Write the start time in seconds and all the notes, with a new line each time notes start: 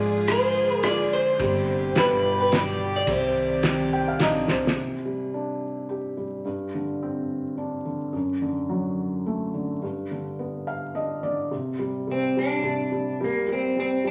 Already playing: G#1 D3 F3 G#3 F4 G#4 D5
0.28 C5, cross-stick, ride
0.83 F4 G#4 D5, cross-stick, ride
1.13 C5
1.38 G1 C3 G3 D4 G4, kick, ride
1.95 G1 B2 G3 B4 D5, snare, ride
2.40 B4
2.52 D5, snare, ride
2.96 D5
3.06 C2 C3 D#3, kick, ride
3.11 C5
3.63 snare, ride
3.93 G5
4.08 F5
4.19 A#1 C4 D4 D#4 D#5, snare, ride
4.47 C2 C5, snare
4.67 snare
4.76 C3
5.05 G3
5.34 D4
5.89 G4
6.17 G3
6.45 G2
6.74 D3
7.03 C4
7.58 D4
7.85 D3
8.13 F#2
8.42 D3
8.69 F#3
9.26 A3
9.54 D3
9.82 G2
10.11 D3
10.39 B3
10.67 F5
10.95 D4 D#5
11.23 D3 D5
11.51 C3
11.79 G3
12.07 C3
12.11 C4
12.37 G3 D4
12.63 C3
12.92 G3
13.21 G3 A#3
13.48 G3
13.52 C4
13.76 G3 C4
14.04 G3 D4